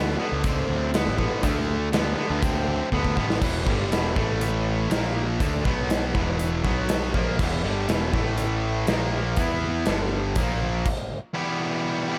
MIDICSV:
0, 0, Header, 1, 4, 480
1, 0, Start_track
1, 0, Tempo, 495868
1, 1394, Time_signature, 4, 2, 24, 8
1, 11796, End_track
2, 0, Start_track
2, 0, Title_t, "Distorted electric guitar"
2, 0, Program_c, 0, 30
2, 0, Note_on_c, 0, 50, 91
2, 0, Note_on_c, 0, 59, 90
2, 159, Note_off_c, 0, 50, 0
2, 162, Note_off_c, 0, 59, 0
2, 181, Note_on_c, 0, 50, 85
2, 187, Note_on_c, 0, 59, 89
2, 403, Note_off_c, 0, 50, 0
2, 406, Note_off_c, 0, 59, 0
2, 425, Note_on_c, 0, 50, 77
2, 432, Note_on_c, 0, 60, 94
2, 862, Note_off_c, 0, 50, 0
2, 865, Note_off_c, 0, 60, 0
2, 911, Note_on_c, 0, 50, 81
2, 914, Note_on_c, 0, 59, 97
2, 1128, Note_off_c, 0, 50, 0
2, 1130, Note_off_c, 0, 59, 0
2, 1145, Note_on_c, 0, 50, 78
2, 1147, Note_on_c, 0, 59, 94
2, 1366, Note_off_c, 0, 50, 0
2, 1367, Note_off_c, 0, 59, 0
2, 1380, Note_on_c, 0, 50, 83
2, 1386, Note_on_c, 0, 57, 96
2, 1819, Note_off_c, 0, 50, 0
2, 1822, Note_off_c, 0, 57, 0
2, 1860, Note_on_c, 0, 50, 89
2, 1862, Note_on_c, 0, 59, 93
2, 2083, Note_off_c, 0, 50, 0
2, 2085, Note_off_c, 0, 59, 0
2, 2104, Note_on_c, 0, 50, 83
2, 2112, Note_on_c, 0, 59, 89
2, 2326, Note_off_c, 0, 50, 0
2, 2329, Note_off_c, 0, 59, 0
2, 2351, Note_on_c, 0, 50, 71
2, 2356, Note_on_c, 0, 60, 95
2, 2785, Note_off_c, 0, 50, 0
2, 2788, Note_off_c, 0, 60, 0
2, 2836, Note_on_c, 0, 50, 79
2, 2843, Note_on_c, 0, 59, 90
2, 3052, Note_off_c, 0, 50, 0
2, 3055, Note_off_c, 0, 59, 0
2, 3065, Note_on_c, 0, 50, 75
2, 3076, Note_on_c, 0, 59, 85
2, 3286, Note_off_c, 0, 50, 0
2, 3291, Note_off_c, 0, 59, 0
2, 3302, Note_on_c, 0, 40, 88
2, 3309, Note_on_c, 0, 47, 103
2, 3311, Note_on_c, 0, 52, 107
2, 3542, Note_off_c, 0, 40, 0
2, 3545, Note_off_c, 0, 47, 0
2, 3546, Note_off_c, 0, 52, 0
2, 3551, Note_on_c, 0, 43, 88
2, 3558, Note_on_c, 0, 50, 93
2, 3562, Note_on_c, 0, 55, 95
2, 3776, Note_off_c, 0, 43, 0
2, 3778, Note_off_c, 0, 50, 0
2, 3780, Note_on_c, 0, 40, 95
2, 3782, Note_on_c, 0, 47, 102
2, 3783, Note_off_c, 0, 55, 0
2, 3787, Note_on_c, 0, 52, 106
2, 4006, Note_off_c, 0, 52, 0
2, 4012, Note_off_c, 0, 47, 0
2, 4016, Note_on_c, 0, 45, 89
2, 4018, Note_on_c, 0, 52, 98
2, 4020, Note_off_c, 0, 40, 0
2, 4021, Note_on_c, 0, 57, 98
2, 4733, Note_off_c, 0, 45, 0
2, 4737, Note_on_c, 0, 46, 99
2, 4738, Note_off_c, 0, 52, 0
2, 4741, Note_off_c, 0, 57, 0
2, 4742, Note_on_c, 0, 53, 91
2, 4747, Note_on_c, 0, 58, 101
2, 5219, Note_off_c, 0, 46, 0
2, 5222, Note_off_c, 0, 53, 0
2, 5224, Note_off_c, 0, 58, 0
2, 5235, Note_on_c, 0, 50, 97
2, 5238, Note_on_c, 0, 57, 96
2, 5239, Note_on_c, 0, 62, 102
2, 5465, Note_off_c, 0, 50, 0
2, 5468, Note_off_c, 0, 57, 0
2, 5469, Note_on_c, 0, 47, 95
2, 5470, Note_off_c, 0, 62, 0
2, 5472, Note_on_c, 0, 54, 104
2, 5476, Note_on_c, 0, 59, 96
2, 5945, Note_off_c, 0, 47, 0
2, 5947, Note_off_c, 0, 54, 0
2, 5949, Note_off_c, 0, 59, 0
2, 5952, Note_on_c, 0, 40, 92
2, 5957, Note_on_c, 0, 47, 100
2, 5961, Note_on_c, 0, 52, 105
2, 6416, Note_off_c, 0, 47, 0
2, 6424, Note_off_c, 0, 52, 0
2, 6427, Note_off_c, 0, 40, 0
2, 6428, Note_on_c, 0, 47, 95
2, 6428, Note_on_c, 0, 54, 102
2, 6434, Note_on_c, 0, 59, 86
2, 6905, Note_off_c, 0, 47, 0
2, 6906, Note_off_c, 0, 54, 0
2, 6908, Note_off_c, 0, 59, 0
2, 6910, Note_on_c, 0, 46, 90
2, 6915, Note_on_c, 0, 53, 98
2, 6916, Note_on_c, 0, 58, 101
2, 7147, Note_off_c, 0, 46, 0
2, 7149, Note_off_c, 0, 53, 0
2, 7150, Note_off_c, 0, 58, 0
2, 7156, Note_on_c, 0, 47, 100
2, 7158, Note_on_c, 0, 40, 99
2, 7162, Note_on_c, 0, 52, 98
2, 7384, Note_off_c, 0, 40, 0
2, 7387, Note_off_c, 0, 47, 0
2, 7387, Note_on_c, 0, 43, 94
2, 7391, Note_off_c, 0, 52, 0
2, 7391, Note_on_c, 0, 50, 98
2, 7395, Note_on_c, 0, 55, 102
2, 7625, Note_off_c, 0, 43, 0
2, 7627, Note_off_c, 0, 50, 0
2, 7629, Note_off_c, 0, 55, 0
2, 7634, Note_on_c, 0, 40, 96
2, 7638, Note_on_c, 0, 47, 94
2, 7641, Note_on_c, 0, 52, 107
2, 7863, Note_off_c, 0, 52, 0
2, 7866, Note_off_c, 0, 47, 0
2, 7868, Note_off_c, 0, 40, 0
2, 7870, Note_on_c, 0, 45, 82
2, 7875, Note_on_c, 0, 52, 88
2, 7879, Note_on_c, 0, 57, 104
2, 8586, Note_off_c, 0, 45, 0
2, 8589, Note_off_c, 0, 52, 0
2, 8591, Note_off_c, 0, 57, 0
2, 8592, Note_on_c, 0, 46, 97
2, 8602, Note_on_c, 0, 53, 92
2, 8602, Note_on_c, 0, 58, 105
2, 9067, Note_off_c, 0, 46, 0
2, 9072, Note_off_c, 0, 53, 0
2, 9072, Note_off_c, 0, 58, 0
2, 9076, Note_on_c, 0, 52, 93
2, 9079, Note_on_c, 0, 59, 96
2, 9084, Note_on_c, 0, 64, 96
2, 9549, Note_off_c, 0, 52, 0
2, 9550, Note_off_c, 0, 59, 0
2, 9552, Note_on_c, 0, 43, 91
2, 9553, Note_off_c, 0, 64, 0
2, 9554, Note_on_c, 0, 50, 95
2, 9556, Note_on_c, 0, 55, 100
2, 10027, Note_off_c, 0, 43, 0
2, 10027, Note_off_c, 0, 50, 0
2, 10029, Note_off_c, 0, 55, 0
2, 10031, Note_on_c, 0, 46, 90
2, 10033, Note_on_c, 0, 53, 91
2, 10041, Note_on_c, 0, 58, 99
2, 10505, Note_off_c, 0, 46, 0
2, 10506, Note_off_c, 0, 53, 0
2, 10510, Note_off_c, 0, 58, 0
2, 10978, Note_on_c, 0, 40, 93
2, 10984, Note_on_c, 0, 47, 102
2, 10988, Note_on_c, 0, 55, 93
2, 10990, Note_on_c, 0, 52, 91
2, 10996, Note_on_c, 0, 59, 94
2, 11000, Note_on_c, 0, 67, 93
2, 11682, Note_off_c, 0, 67, 0
2, 11684, Note_off_c, 0, 59, 0
2, 11689, Note_off_c, 0, 40, 0
2, 11692, Note_off_c, 0, 47, 0
2, 11692, Note_off_c, 0, 55, 0
2, 11693, Note_on_c, 0, 67, 83
2, 11695, Note_off_c, 0, 52, 0
2, 11696, Note_on_c, 0, 59, 80
2, 11703, Note_on_c, 0, 55, 88
2, 11705, Note_on_c, 0, 47, 78
2, 11706, Note_on_c, 0, 52, 85
2, 11711, Note_on_c, 0, 40, 72
2, 11796, Note_off_c, 0, 40, 0
2, 11796, Note_off_c, 0, 47, 0
2, 11796, Note_off_c, 0, 52, 0
2, 11796, Note_off_c, 0, 55, 0
2, 11796, Note_off_c, 0, 59, 0
2, 11796, Note_off_c, 0, 67, 0
2, 11796, End_track
3, 0, Start_track
3, 0, Title_t, "Picked electric bass"
3, 0, Program_c, 1, 34
3, 0, Note_on_c, 1, 38, 103
3, 149, Note_off_c, 1, 38, 0
3, 309, Note_on_c, 1, 37, 89
3, 601, Note_off_c, 1, 37, 0
3, 665, Note_on_c, 1, 38, 89
3, 1023, Note_on_c, 1, 33, 82
3, 1038, Note_off_c, 1, 38, 0
3, 1221, Note_off_c, 1, 33, 0
3, 1390, Note_on_c, 1, 38, 107
3, 2069, Note_off_c, 1, 38, 0
3, 2229, Note_on_c, 1, 38, 93
3, 2715, Note_off_c, 1, 38, 0
3, 2829, Note_on_c, 1, 38, 92
3, 2928, Note_off_c, 1, 38, 0
3, 2949, Note_on_c, 1, 38, 89
3, 3069, Note_on_c, 1, 33, 91
3, 3084, Note_off_c, 1, 38, 0
3, 3265, Note_off_c, 1, 33, 0
3, 3307, Note_on_c, 1, 28, 93
3, 3534, Note_off_c, 1, 28, 0
3, 3552, Note_on_c, 1, 31, 99
3, 3777, Note_off_c, 1, 31, 0
3, 3791, Note_on_c, 1, 28, 85
3, 4016, Note_off_c, 1, 28, 0
3, 4034, Note_on_c, 1, 33, 94
3, 4717, Note_off_c, 1, 33, 0
3, 4744, Note_on_c, 1, 34, 96
3, 5196, Note_off_c, 1, 34, 0
3, 5228, Note_on_c, 1, 38, 99
3, 5455, Note_off_c, 1, 38, 0
3, 5471, Note_on_c, 1, 35, 101
3, 5920, Note_off_c, 1, 35, 0
3, 5956, Note_on_c, 1, 28, 97
3, 6403, Note_off_c, 1, 28, 0
3, 6437, Note_on_c, 1, 35, 98
3, 6884, Note_off_c, 1, 35, 0
3, 6916, Note_on_c, 1, 34, 99
3, 7140, Note_off_c, 1, 34, 0
3, 7155, Note_on_c, 1, 28, 93
3, 7379, Note_off_c, 1, 28, 0
3, 7399, Note_on_c, 1, 31, 101
3, 7621, Note_off_c, 1, 31, 0
3, 7634, Note_on_c, 1, 28, 93
3, 7859, Note_off_c, 1, 28, 0
3, 7872, Note_on_c, 1, 33, 105
3, 8556, Note_off_c, 1, 33, 0
3, 8592, Note_on_c, 1, 34, 89
3, 9040, Note_off_c, 1, 34, 0
3, 9072, Note_on_c, 1, 40, 92
3, 9520, Note_off_c, 1, 40, 0
3, 9556, Note_on_c, 1, 31, 87
3, 10002, Note_off_c, 1, 31, 0
3, 10028, Note_on_c, 1, 34, 94
3, 10477, Note_off_c, 1, 34, 0
3, 11796, End_track
4, 0, Start_track
4, 0, Title_t, "Drums"
4, 86, Note_on_c, 9, 38, 30
4, 183, Note_off_c, 9, 38, 0
4, 423, Note_on_c, 9, 42, 72
4, 427, Note_on_c, 9, 36, 119
4, 520, Note_off_c, 9, 42, 0
4, 524, Note_off_c, 9, 36, 0
4, 910, Note_on_c, 9, 42, 72
4, 920, Note_on_c, 9, 38, 115
4, 1007, Note_off_c, 9, 42, 0
4, 1017, Note_off_c, 9, 38, 0
4, 1043, Note_on_c, 9, 38, 30
4, 1140, Note_off_c, 9, 38, 0
4, 1147, Note_on_c, 9, 36, 86
4, 1244, Note_off_c, 9, 36, 0
4, 1385, Note_on_c, 9, 42, 66
4, 1387, Note_on_c, 9, 36, 104
4, 1482, Note_off_c, 9, 42, 0
4, 1484, Note_off_c, 9, 36, 0
4, 1870, Note_on_c, 9, 42, 71
4, 1880, Note_on_c, 9, 38, 108
4, 1967, Note_off_c, 9, 42, 0
4, 1977, Note_off_c, 9, 38, 0
4, 2348, Note_on_c, 9, 36, 121
4, 2350, Note_on_c, 9, 42, 66
4, 2445, Note_off_c, 9, 36, 0
4, 2447, Note_off_c, 9, 42, 0
4, 2828, Note_on_c, 9, 36, 59
4, 2925, Note_off_c, 9, 36, 0
4, 2948, Note_on_c, 9, 36, 61
4, 3044, Note_off_c, 9, 36, 0
4, 3068, Note_on_c, 9, 36, 81
4, 3164, Note_off_c, 9, 36, 0
4, 3198, Note_on_c, 9, 38, 86
4, 3295, Note_off_c, 9, 38, 0
4, 3307, Note_on_c, 9, 36, 108
4, 3307, Note_on_c, 9, 49, 109
4, 3404, Note_off_c, 9, 36, 0
4, 3404, Note_off_c, 9, 49, 0
4, 3548, Note_on_c, 9, 36, 103
4, 3645, Note_off_c, 9, 36, 0
4, 3795, Note_on_c, 9, 42, 71
4, 3806, Note_on_c, 9, 38, 107
4, 3892, Note_off_c, 9, 42, 0
4, 3903, Note_off_c, 9, 38, 0
4, 4030, Note_on_c, 9, 36, 109
4, 4127, Note_off_c, 9, 36, 0
4, 4271, Note_on_c, 9, 42, 75
4, 4368, Note_off_c, 9, 42, 0
4, 4752, Note_on_c, 9, 42, 72
4, 4763, Note_on_c, 9, 38, 109
4, 4849, Note_off_c, 9, 42, 0
4, 4860, Note_off_c, 9, 38, 0
4, 4885, Note_on_c, 9, 38, 32
4, 4982, Note_off_c, 9, 38, 0
4, 5230, Note_on_c, 9, 36, 98
4, 5232, Note_on_c, 9, 42, 76
4, 5327, Note_off_c, 9, 36, 0
4, 5328, Note_off_c, 9, 42, 0
4, 5472, Note_on_c, 9, 36, 102
4, 5569, Note_off_c, 9, 36, 0
4, 5711, Note_on_c, 9, 42, 78
4, 5722, Note_on_c, 9, 38, 109
4, 5808, Note_off_c, 9, 42, 0
4, 5819, Note_off_c, 9, 38, 0
4, 5952, Note_on_c, 9, 36, 110
4, 6049, Note_off_c, 9, 36, 0
4, 6189, Note_on_c, 9, 42, 75
4, 6286, Note_off_c, 9, 42, 0
4, 6433, Note_on_c, 9, 36, 99
4, 6529, Note_off_c, 9, 36, 0
4, 6667, Note_on_c, 9, 42, 66
4, 6678, Note_on_c, 9, 38, 110
4, 6764, Note_off_c, 9, 42, 0
4, 6775, Note_off_c, 9, 38, 0
4, 6802, Note_on_c, 9, 38, 31
4, 6899, Note_off_c, 9, 38, 0
4, 6914, Note_on_c, 9, 36, 106
4, 7011, Note_off_c, 9, 36, 0
4, 7154, Note_on_c, 9, 49, 93
4, 7156, Note_on_c, 9, 36, 103
4, 7251, Note_off_c, 9, 49, 0
4, 7253, Note_off_c, 9, 36, 0
4, 7635, Note_on_c, 9, 42, 70
4, 7646, Note_on_c, 9, 38, 117
4, 7732, Note_off_c, 9, 42, 0
4, 7742, Note_off_c, 9, 38, 0
4, 7875, Note_on_c, 9, 36, 110
4, 7972, Note_off_c, 9, 36, 0
4, 8108, Note_on_c, 9, 42, 72
4, 8205, Note_off_c, 9, 42, 0
4, 8588, Note_on_c, 9, 42, 71
4, 8599, Note_on_c, 9, 38, 116
4, 8685, Note_off_c, 9, 42, 0
4, 8696, Note_off_c, 9, 38, 0
4, 9065, Note_on_c, 9, 42, 73
4, 9072, Note_on_c, 9, 36, 106
4, 9162, Note_off_c, 9, 42, 0
4, 9169, Note_off_c, 9, 36, 0
4, 9541, Note_on_c, 9, 42, 76
4, 9552, Note_on_c, 9, 38, 109
4, 9638, Note_off_c, 9, 42, 0
4, 9648, Note_off_c, 9, 38, 0
4, 10025, Note_on_c, 9, 42, 79
4, 10029, Note_on_c, 9, 36, 110
4, 10121, Note_off_c, 9, 42, 0
4, 10125, Note_off_c, 9, 36, 0
4, 10507, Note_on_c, 9, 49, 106
4, 10509, Note_on_c, 9, 36, 107
4, 10604, Note_off_c, 9, 49, 0
4, 10606, Note_off_c, 9, 36, 0
4, 11796, End_track
0, 0, End_of_file